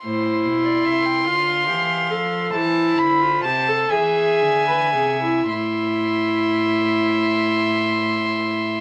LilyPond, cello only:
\new Staff \with { instrumentName = "Cello" } { \clef bass \time 6/8 \key a \minor \tempo 4. = 41 a,8 b,8 c8 d8 e8 f8 | e8 d8 c8 e8 d8 c8 | a,2. | }